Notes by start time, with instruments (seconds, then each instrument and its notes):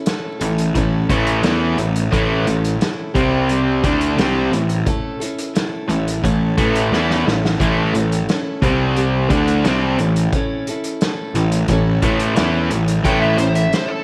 0.06 steel-string acoustic guitar A3 C#4 E4 A4, snare, closed hi-hat
0.40 picked electric bass A1, distorted electric guitar A2 E3, steel-string acoustic guitar C#4 E4 A4, closed hi-hat
0.58 closed hi-hat
0.75 picked electric bass A1, distorted electric guitar A2 E3, steel-string acoustic guitar A2 A3 C#4 E4 A4, kick, closed hi-hat
1.09 picked electric bass A1, distorted electric guitar A2 E3 A3, steel-string acoustic guitar C#4 E4 A4, kick, closed hi-hat
1.27 closed hi-hat
1.42 picked electric bass E2, distorted electric guitar E3 B3 E4, steel-string acoustic guitar A3 C#4 E4, snare, closed hi-hat
1.46 steel-string acoustic guitar A4
1.76 picked electric bass A1, distorted electric guitar A2 E3, steel-string acoustic guitar C#4 E4 A4, closed hi-hat
1.96 closed hi-hat
2.10 picked electric bass A1, steel-string acoustic guitar A2 A3 C#4 E4 A4, distorted electric guitar A2 E3 A3, kick, closed hi-hat
2.45 picked electric bass A1, distorted electric guitar A2 E3, steel-string acoustic guitar C#4 E4 A4, closed hi-hat
2.64 closed hi-hat
2.79 steel-string acoustic guitar A3 C#4 E4 A4, snare, closed hi-hat
3.14 picked electric bass C2, distorted electric guitar C3 G3 C4, steel-string acoustic guitar G3 C4 G4, kick, closed hi-hat
3.49 steel-string acoustic guitar C3 G3 C4 G4, closed hi-hat
3.83 picked electric bass D2, distorted electric guitar D3 A3 D4, steel-string acoustic guitar E4 A4, kick, closed hi-hat
4.01 closed hi-hat
4.17 picked electric bass C2, distorted electric guitar C3 G3 C4, steel-string acoustic guitar A3 E4 A4, snare, closed hi-hat
4.52 picked electric bass A1, distorted electric guitar A2 E3, steel-string acoustic guitar C#4 E4 A4, closed hi-hat
4.69 closed hi-hat
4.85 steel-string acoustic guitar A2 A3 C#4 E4 A4, kick, closed hi-hat
5.20 steel-string acoustic guitar C#4 E4 A4, closed hi-hat
5.39 closed hi-hat
5.53 steel-string acoustic guitar A3 C#4 E4 A4, snare, closed hi-hat
5.88 picked electric bass A1, distorted electric guitar A2 E3, steel-string acoustic guitar E4 A4, closed hi-hat
5.92 steel-string acoustic guitar C#4
6.08 closed hi-hat
6.23 picked electric bass A1, steel-string acoustic guitar A2 A3 C#4 E4 A4, distorted electric guitar A2 E3, kick, closed hi-hat
6.57 picked electric bass A1, distorted electric guitar A2 E3 A3, steel-string acoustic guitar C#4 E4 A4, kick, closed hi-hat
6.75 closed hi-hat
6.91 picked electric bass E2, distorted electric guitar E3 B3 E4, steel-string acoustic guitar A3 C#4 E4, snare
6.96 steel-string acoustic guitar A4
7.10 snare
7.26 picked electric bass A1, distorted electric guitar A2 E3, steel-string acoustic guitar C#4 E4 A4, snare
7.45 snare
7.58 picked electric bass A1, steel-string acoustic guitar A2 A3 C#4 E4 A4, distorted electric guitar A2 E3 A3, kick, closed hi-hat
7.94 picked electric bass A1, distorted electric guitar A2 E3, steel-string acoustic guitar C#4 E4 A4, closed hi-hat
8.12 closed hi-hat
8.28 steel-string acoustic guitar A3 C#4 E4 A4, snare, closed hi-hat
8.62 picked electric bass C2, distorted electric guitar C3 G3 C4, steel-string acoustic guitar G3 C4 G4, kick, closed hi-hat
8.96 steel-string acoustic guitar C3 G3 C4 G4, closed hi-hat
9.30 picked electric bass D2, distorted electric guitar D3 A3 D4, steel-string acoustic guitar E4 A4, kick, closed hi-hat
9.47 closed hi-hat
9.63 picked electric bass C2, distorted electric guitar C3 G3 C4, steel-string acoustic guitar A3, snare, closed hi-hat
9.68 steel-string acoustic guitar E4 A4
9.99 picked electric bass A1, distorted electric guitar A2 E3, steel-string acoustic guitar E4 A4, closed hi-hat
10.03 steel-string acoustic guitar C#4
10.16 closed hi-hat
10.33 steel-string acoustic guitar A2 A3 C#4 E4 A4, kick, closed hi-hat
10.67 steel-string acoustic guitar E4 A4, closed hi-hat
10.71 steel-string acoustic guitar C#4
10.84 closed hi-hat
11.01 steel-string acoustic guitar A3 C#4 E4, snare, closed hi-hat
11.05 steel-string acoustic guitar A4
11.34 picked electric bass A1, distorted electric guitar A2 E3, steel-string acoustic guitar C#4 E4 A4, closed hi-hat
11.52 closed hi-hat
11.68 picked electric bass A1, distorted electric guitar A2 E3, steel-string acoustic guitar A2 A3 C#4, kick, closed hi-hat
11.72 steel-string acoustic guitar E4 A4
12.02 picked electric bass A1, distorted electric guitar A2 E3 A3, steel-string acoustic guitar E4 A4, kick, closed hi-hat
12.07 steel-string acoustic guitar C#4
12.20 closed hi-hat
12.36 picked electric bass E2, distorted electric guitar E3 B3 E4, steel-string acoustic guitar A3 C#4, snare, closed hi-hat
12.40 steel-string acoustic guitar E4 A4
12.71 picked electric bass A1, distorted electric guitar A2 E3, steel-string acoustic guitar C#4 E4 A4, closed hi-hat
12.88 closed hi-hat
13.04 picked electric bass A1, distorted electric guitar A2 E3 A3, steel-string acoustic guitar A2 A3 C#4 E4 A4, electric slide guitar G5, kick, closed hi-hat
13.22 electric slide guitar E5
13.37 picked electric bass A1, distorted electric guitar A2 E3, steel-string acoustic guitar E4 A4, electric slide guitar C5, closed hi-hat
13.42 steel-string acoustic guitar C#4
13.55 electric slide guitar E5, closed hi-hat
13.72 steel-string acoustic guitar A3 C#4 E4 A4, electric slide guitar C5, snare, closed hi-hat
13.88 electric slide guitar A4